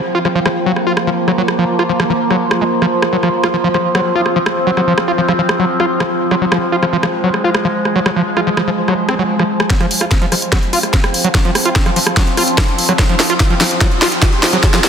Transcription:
Already playing: F3 A#3 F4 C5 C6
0.15 F4
0.25 F3, cross-stick
0.35 F3
0.46 F3, cross-stick
0.66 F#3
0.76 cross-stick
0.87 F4
0.97 cross-stick
1.07 F3
1.28 F#3, cross-stick
1.38 F#3
1.48 cross-stick
1.59 F3
1.79 F4, cross-stick
1.89 F3
2.00 F3, cross-stick
2.10 F3
2.31 F#3, cross-stick
2.51 cross-stick
2.61 G#3
2.82 F3, cross-stick
3.02 cross-stick
3.13 F#3 C4
3.23 F3, cross-stick
3.43 F4, cross-stick
3.54 F3
3.64 F3
3.74 F3, cross-stick
3.95 F#3, cross-stick
4.15 F4
4.26 cross-stick
4.36 F3
4.46 cross-stick
4.67 F#3
4.77 F#3, cross-stick
4.87 F3
4.98 cross-stick
5.08 F4
5.18 F3
5.28 F3, cross-stick
5.39 F3
5.49 cross-stick
5.59 F#3
5.80 F4, cross-stick
6.00 F3, cross-stick
6.31 F#3, cross-stick
6.41 F#3 G#3
6.52 F3, cross-stick
6.72 F4
6.83 F3, cross-stick
6.93 F3
7.03 F3, cross-stick
7.24 F#3
7.34 cross-stick
7.44 F4
7.55 cross-stick
7.65 F3
7.85 cross-stick
7.96 F#3
8.06 F#3, cross-stick
8.16 F3
8.37 F4, cross-stick
8.47 F3
8.57 F3, cross-stick
8.67 F3
8.88 F#3, cross-stick
9.09 C4, cross-stick
9.19 F#3
9.39 F3, cross-stick
9.60 cross-stick
9.70 F3 F#3 C4, kick, snare, closed hi-hat, riser
9.80 F3, cross-stick, closed hi-hat
9.91 open hi-hat
10.01 F4, cross-stick
10.11 F3, kick, snare, closed hi-hat
10.22 F3, closed hi-hat
10.32 F3, cross-stick, open hi-hat
10.42 closed hi-hat
10.52 F#3, kick, cross-stick, snare, closed hi-hat
10.63 closed hi-hat
10.73 F4, open hi-hat
10.83 cross-stick, closed hi-hat
10.93 F3, kick, snare, closed hi-hat
11.04 cross-stick, closed hi-hat
11.14 open hi-hat
11.24 F#3, closed hi-hat
11.35 F#3, kick, cross-stick, snare, closed hi-hat
11.45 F3, closed hi-hat
11.55 cross-stick, open hi-hat
11.65 F4, closed hi-hat
11.76 F3, kick, snare, closed hi-hat
11.86 F3, cross-stick, closed hi-hat
11.96 F3, open hi-hat
12.07 cross-stick, closed hi-hat
12.17 F#3, kick, snare, closed hi-hat
12.27 closed hi-hat
12.37 F4, cross-stick, open hi-hat
12.48 closed hi-hat
12.58 F3, kick, cross-stick, snare, closed hi-hat
12.68 closed hi-hat
12.78 open hi-hat
12.89 F#3, cross-stick, closed hi-hat
12.99 F#3, kick, snare, closed hi-hat
13.09 F3, closed hi-hat
13.20 snare, open hi-hat
13.30 F4, closed hi-hat
13.40 F3, kick, snare, closed hi-hat
13.50 F3, closed hi-hat
13.61 F3, snare, open hi-hat
13.71 closed hi-hat
13.81 F#3, kick, snare, closed hi-hat
13.91 closed hi-hat
14.02 F4, snare, open hi-hat
14.12 closed hi-hat
14.22 F3, kick, snare, closed hi-hat
14.33 closed hi-hat
14.43 snare, open hi-hat
14.53 F#3, closed hi-hat
14.63 F#3, kick, snare, closed hi-hat
14.74 F3, snare, closed hi-hat
14.84 snare, open hi-hat

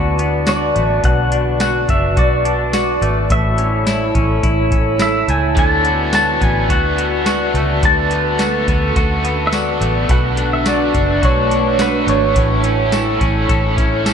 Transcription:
Already playing: D2 D3 A3 B3 D4 E4 F#4 B4 D5 A5
0.19 B3 D4, closed hi-hat
0.47 F#4 D5, snare, closed hi-hat, tambourine
0.76 A1 A3, closed hi-hat
1.04 B1 B2 F#4 D5 F#5, kick, closed hi-hat
1.32 D4, closed hi-hat
1.60 F#4 F#5, snare, closed hi-hat, tambourine
1.89 F#1 D4 E5, kick, closed hi-hat
2.17 B1 F#4 D5, kick, closed hi-hat
2.45 D4, closed hi-hat
2.73 F#4, snare, closed hi-hat, tambourine
3.01 G#1 A3, closed hi-hat
3.30 A1 A2 E4 A4 C#5 E5 A5, kick, closed hi-hat
3.58 C#4, closed hi-hat
3.87 E4, snare, closed hi-hat, tambourine
4.15 A1 C#4, kick, closed hi-hat
4.43 A1 E4, kick, closed hi-hat
4.72 C#4, kick, closed hi-hat
4.99 E4 E5, snare, closed hi-hat, tambourine
5.28 C#2 A3 G#5, closed hi-hat
5.55 D2 D3 A3 B3 F#4 B4 D5 A5, kick, closed hi-hat
5.83 B3 F#4, closed hi-hat
5.88 A3
6.12 D3 A3 B3 A5, snare, closed hi-hat, tambourine
6.16 F#4
6.40 A1 B3 F#4 G#5, kick, closed hi-hat
6.45 A3
6.69 D2 D3 A3 B3 F#4 F#5, kick, closed hi-hat
6.96 B3 F#4, closed hi-hat
7.01 A3
7.25 D3 A3 B3, snare, closed hi-hat, tambourine
7.30 F#4
7.53 C#2 B3 F#4, closed hi-hat
7.58 A3
7.82 D2 D3 A3 B3 F#4 A4 A5, kick, closed hi-hat
8.10 B3 F#4, closed hi-hat
8.14 A3
8.38 D3 A3 B3, snare, closed hi-hat, tambourine
8.43 F#4
8.59 C#4
8.67 D2 B3 F#4, kick, closed hi-hat
8.71 A3
8.95 D2 D3 A3 B3 F#4, kick, closed hi-hat
9.23 B3 F#4, closed hi-hat
9.28 A3
9.47 E5
9.51 D3 A3 B3 D5, snare, closed hi-hat, tambourine
9.56 F#4
9.80 A1 B3 F#4, closed hi-hat
9.84 A3
10.08 B1 B2 F#3 A3 D4 F#4 F#5, kick, closed hi-hat
10.36 D4 F#4, closed hi-hat
10.40 A3
10.53 E5
10.64 F#3 A3 D4 D5, snare, closed hi-hat, tambourine
10.69 F#4
10.85 F#4
10.93 F#1 D4 F#4, kick, closed hi-hat
10.97 A3
11.22 B1 B2 F#3 A3 D4 F#4 C#5, kick, closed hi-hat
11.49 D4 F#4, closed hi-hat
11.54 A3
11.78 F#3 A3 D4 B4, snare, closed hi-hat, tambourine
11.82 F#4
12.06 G#1 D4 F#4 C#5, closed hi-hat
12.11 A3
12.35 A1 A2 E3 A3 C#4 E4 A4 C#5, kick, closed hi-hat
12.63 C#4 E4, closed hi-hat
12.67 A3
12.91 E3 A3 C#4 A4, snare, closed hi-hat, tambourine
12.96 E4
13.20 A1 C#4 E4, kick, closed hi-hat
13.24 A3
13.48 A1 A2 E3 A3 C#4 E4 A4, kick, closed hi-hat
13.76 C#4 E4, kick, closed hi-hat
13.81 A3
14.04 E3 A3 C#4 A4, snare, closed hi-hat, tambourine
14.09 E4

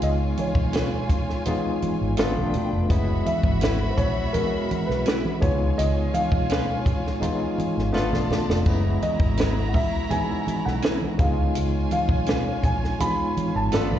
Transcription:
Already playing: G#3 B3 D#4 F4 C#5 G#5
0.02 C#2 D#5, closed hi-hat
0.37 C#5, closed hi-hat, high conga
0.55 B1, kick, high conga
0.73 C#4 F4 B4, snare, closed hi-hat
1.09 A#1, kick, closed hi-hat, high conga, low conga
1.29 snare
1.45 G#3 B3 D#4 F4, closed hi-hat, muted conga, high conga, low conga
1.82 muted fingered electric bass stroke, closed hi-hat, high conga
2.01 G#1
2.17 G1 A3 B3 D4 F4 A4 B4 G5, snare, closed hi-hat
2.37 B1, high conga
2.54 closed hi-hat, muted conga, low conga
2.73 F1
2.89 F#1 G#3 B3 C#4 E4 F#4 E5 B5, kick, closed hi-hat, muted conga
3.26 E5, closed hi-hat, muted conga, high conga
3.43 G#1, kick, high conga
3.61 C#4 E4 B4, snare, closed hi-hat, muted conga
3.90 C5
3.97 A#1 C#5, kick, closed hi-hat, muted conga, high conga, low conga
4.33 G#3 B3 C#4 F#4 A#4, closed hi-hat, muted conga, high conga, low conga
4.71 muted fingered electric bass stroke, closed hi-hat, muted conga, high conga
4.87 B1 B4, snare
5.06 C#4 E4 B4, snare, closed hi-hat
5.25 high conga
5.40 C#2 G#3 B3 D#4 F4 C#5 G#5, kick, closed hi-hat, muted conga, low conga
5.78 C#2 D#5, closed hi-hat, muted conga
6.14 F5, closed hi-hat, high conga
6.32 B1, kick, high conga
6.49 C#4 F4 B4, snare, closed hi-hat
6.86 A#1, kick, closed hi-hat, muted conga, high conga, low conga
7.06 snare
7.20 G#3 B3 D#4 F4, closed hi-hat, muted conga, high conga, low conga
7.58 muted fingered electric bass stroke, closed hi-hat, muted conga, high conga
7.77 G#1, snare
7.92 G1 A3 B3 D4 F4 A4 B4 D5 A5, snare, muted conga
8.13 B1, snare, high conga
8.31 snare, low conga
8.49 F1, snare
8.65 F#1 G#3 B3 C#4 E4 F#4 A#5, kick, splash, muted conga
9.02 D#5, closed hi-hat, high conga
9.20 G#1, kick, high conga
9.37 C#4 E4 B4, snare, closed hi-hat
9.68 F#5
9.74 A#1 E5, kick, open hi-hat, muted conga, high conga, low conga
10.09 G#3 B3 C#4 D#4 G#5, closed hi-hat, muted conga, high conga, low conga
10.19 E4
10.47 muted fingered electric bass stroke, closed hi-hat, muted conga, high conga
10.65 B1 F#5, snare
10.82 C#4 E4 B4, snare, closed hi-hat, muted conga
11.01 high conga
11.18 C#2 G#3 B3 D#4 F4 C#5 F5 G#5, kick, closed hi-hat, muted conga, low conga
11.55 C#2, closed hi-hat, muted conga
11.91 F5, closed hi-hat, muted conga, high conga
12.09 B1, kick, high conga
12.26 C#4 F4 B4, snare, closed hi-hat, muted conga
12.63 A#1 G#5, kick, closed hi-hat, high conga, low conga
12.84 snare
12.99 G#3 B3 D#4 F4 B5, closed hi-hat, muted conga, high conga, low conga
13.37 muted fingered electric bass stroke, closed hi-hat, muted conga, high conga
13.55 G#1 A5
13.72 G1 A3 B3 D4 F4 A4 B4 D5 B5, snare, closed hi-hat
13.91 B1, high conga

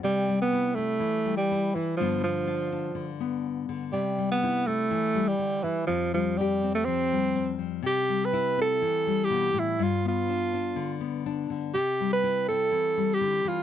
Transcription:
Already playing: G3
0.03 C3 G3
0.28 G3
0.41 B3
0.53 E4
0.75 A3 E4
1.00 E3
1.26 G3
1.37 G3
1.52 E4
1.75 E3
1.97 G2 D3 F3 B3
2.02 D4 F4
2.24 F3, muted nylon-string guitar stroke
2.47 F4
2.72 D4
2.95 D3
3.20 B3
3.69 D3
3.92 C3 G3
4.18 G3
4.32 B3
4.44 E4
4.66 A3 E4
4.91 E3
5.15 G3
5.28 G3
5.39 D3
5.63 E3
5.87 F2 F3
6.14 F3 G3
6.38 G3 G4
6.64 C4
6.75 A3
6.85 F3 C4
7.13 G3
7.36 C4
7.58 F3
7.82 C3 G4
8.09 G3
8.25 B4
8.33 E4
8.58 C4 A4
8.82 E3
9.07 G3
9.24 G4
9.30 B2
9.53 A2
9.59 E4
9.79 G2 F4
10.05 B3 F4
10.29 D4
10.54 D4
10.76 D3
11.01 B3
11.26 D4
11.50 D3
11.74 C3 G4
12.01 G3
12.12 B4
12.24 E4
12.48 C4 A4
12.71 E3
12.97 G3
13.14 G4
13.21 D3
13.45 E3 F4

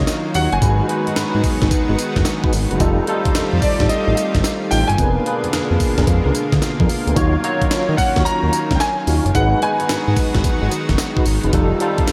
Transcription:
Already playing: D#3 F#3 A#3 C#4 D#4 F4 C#5 D#5
0.07 snare, closed hi-hat, tambourine
0.34 D#2 D#4 F4 F#4 C#5 F#5, open hi-hat, tambourine
0.52 F#1 G#5, closed hi-hat
0.61 G#1 G#3 B3 D#4 F#4 G#4 B4, kick, closed hi-hat, tambourine
0.89 G#3 D#4 F#4 B4, closed hi-hat
1.07 G#2, closed hi-hat
1.16 G#2, snare, closed hi-hat, tambourine
1.35 G#2
1.44 kick, open hi-hat, tambourine
1.61 G#1 D#4 F#4 G#4 B4, kick, snare, closed hi-hat
1.71 kick, closed hi-hat, tambourine
1.89 G#1 D#4 F#4 G#4 B4
1.99 closed hi-hat, tambourine
2.16 F#1, kick, snare, closed hi-hat
2.25 snare, closed hi-hat, tambourine
2.43 D#4 F#4 G#4 B4, kick
2.53 G#1, open hi-hat, tambourine
2.70 F#1 D#4 F#4 G#4 B4, closed hi-hat
2.80 F1 G3 A3 C4 D#4 F4 G4 A4, kick, closed hi-hat, tambourine
3.07 G3 D#4 F4 A4, closed hi-hat
3.25 F2, kick, closed hi-hat
3.35 F2, snare, closed hi-hat, tambourine
3.53 F2
3.62 D5, kick, open hi-hat, tambourine
3.80 A1 D#4 F4 G4 A4, kick, snare, closed hi-hat
3.89 D#5, closed hi-hat, tambourine
4.07 A1 D#4 F4 G4 A4
4.17 closed hi-hat, tambourine
4.35 G#1, kick, snare, closed hi-hat
4.44 snare, closed hi-hat, tambourine
4.71 A1 D#4 F4 G4 A4 G5, open hi-hat, tambourine
4.88 G1 G#5, closed hi-hat
4.98 F1 B2 D3 G#3 A#3 B3 D4 F4 G#4 A#4 B4, kick, closed hi-hat, tambourine
5.26 A#3 D4 G#4 B4, closed hi-hat
5.44 F2, closed hi-hat
5.53 F2, snare, closed hi-hat, tambourine
5.71 F2
5.80 kick, open hi-hat, tambourine
5.98 F1 B3 D4 G#4 A#4, kick, snare, closed hi-hat
6.07 F2, kick, closed hi-hat, tambourine
6.25 C#2 B3 D4 G#4 A#4
6.35 closed hi-hat, tambourine
6.52 D2, kick, snare, closed hi-hat
6.62 snare, closed hi-hat, tambourine
6.79 F2 B3 D4 G#4 A#4, kick
6.89 open hi-hat, tambourine
7.06 D2 B3 D4 G#4 A#4, closed hi-hat
7.16 D#2 D#3 F#3 C#4 D#4 F4 F#4 C#5, kick, closed hi-hat, tambourine
7.43 F#3 D#4 F4 C#5, closed hi-hat
7.62 D#3, kick, closed hi-hat
7.71 D#3, snare, closed hi-hat, tambourine
7.89 D#3
7.97 F#5, kick, open hi-hat, tambourine
8.16 D#2 D#4 F4 F#4 C#5, kick, snare, closed hi-hat
8.25 A#5, closed hi-hat, tambourine
8.43 D#2 D#4 F4 F#4 C#5
8.53 closed hi-hat, tambourine
8.71 C#2, kick, snare, closed hi-hat
8.75 G5
8.80 G#5, snare, closed hi-hat, tambourine
9.07 D#2 D#4 F4 F#4 C#5, open hi-hat, tambourine
9.25 F#1, closed hi-hat
9.35 G#1 D#3 F#3 G#3 B3 D#4 F#4 G#4 B4 F#5, kick, closed hi-hat, tambourine
9.62 G#3 D#4 F#4 B4 G#5, closed hi-hat
9.80 G#2, closed hi-hat
9.89 G#2, snare, closed hi-hat, tambourine
10.08 G#2
10.16 kick, open hi-hat, tambourine
10.35 G#1 D#4 F#4 G#4 B4, kick, snare, closed hi-hat
10.44 kick, closed hi-hat, tambourine
10.62 G#1 D#4 F#4 G#4 B4
10.71 closed hi-hat, tambourine
10.89 F#1, kick, snare, closed hi-hat
10.98 snare, closed hi-hat, tambourine
11.16 D#4 F#4 G#4 B4, kick
11.26 G#1, open hi-hat, tambourine
11.44 F#1 D#4 F#4 G#4 B4, closed hi-hat
11.53 F1 G3 A3 C4 D#4 F4 G4 A4, kick, closed hi-hat, tambourine
11.80 G3 D#4 F4 A4, closed hi-hat
11.98 F2, kick, closed hi-hat
12.07 F2, snare, closed hi-hat, tambourine

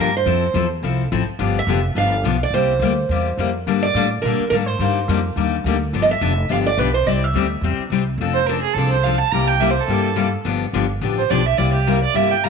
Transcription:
0.00 G2 A#4
0.17 C5
0.26 F2 F3 C4 E4 A4
0.54 E2 F3 C4 E4 A4
0.83 C2 F3 C4 E4 A4
1.12 A1 F3 C4 E4 A4
1.27 muted upright bass stroke
1.39 G1 D3 F3 B3 D4 G4
1.59 E5
1.67 F1 D3 F3 B3 D4 G4
1.95 G1 D3 F3 B3 D4 G4 F5
2.24 B1 D3 F3 B3 D4 G4
2.43 D5
2.50 C2 C3 G3 A#3 G4 C5
2.55 E4
2.79 D2 C3 G3 A#3 E4 G4
3.09 E2 C3 G3 A#3 E4 G4
3.37 F2 C3 G3 A#3 E4 G4
3.67 G2 D3 G3 A#3 D4 A4
3.83 D5
3.94 A2 D3 G3 A#3 D4 A4
4.22 A#2 D3 G3 A#3 D4 A#4
4.26 A4
4.39 muted upright bass stroke
4.50 G#2 D3 G3 A#3 D4 A4 A#4
4.66 C5
4.79 G2 D3 G3 A#3 D#4 G4
5.08 F2 D3 G3 A#3 D#4 G4
5.36 D#2 D3 G3 A#3 D#4 G4
5.64 D2 D3 G3 A#3 D#4 G4
5.93 G1 D3 F3 B3 D4 G4
6.02 D#5
6.11 E5
6.21 F1 D3 F3 B3 D4 G4
6.49 G1 D3 F3 B3 D4 G4 F5
6.66 D5
6.77 B1 D3 F3 B3 D4 G4 B4
6.94 C5
7.06 C2 C3 G3 C4 E4 G4 D5
7.24 E5
7.34 D2 C3 G3 C4 E4 G4
7.61 E2 C3 G3 C4 E4 G4
7.78 muted upright bass stroke
7.90 C2 C3 G3 C4 E4 G4
8.18 F1 F3 C4 D4
8.22 A4
8.34 C5
8.46 F3 C4 D4 A4 A#4
8.60 G#4
8.74 C2 A4
8.78 F3 C4 D4 A4
8.91 C5
9.03 F3 C4 D4 A4 F5
9.18 A5
9.32 C2 C3 G3 A#3 E4 G4 A#5
9.48 G5
9.60 C3 G3 A#3 E4 G4 E5
9.70 C5
9.80 A4
9.88 G2 C3 G3 A#3 E4 G4
10.16 C3 G3 A#3 E4 G4
10.45 G1 D3 F3 B3 D4 G4
10.73 G1 D3 F3 B3 D4 G4
11.01 A1 D3 F3 B3 D4 G4
11.18 C5
11.30 B1 D3 F3 B3 D4 G4 D5
11.46 E5
11.57 C2 C3 G3 A#3 E4 G4 D5
11.73 G4
11.87 C3 G3 A#3 E4 G4 A#4
12.03 D5
12.14 G1 C3 G3 A#3 E4 G4 E5
12.31 G5
12.44 C3 G3 A#3 E4 G4 A#5

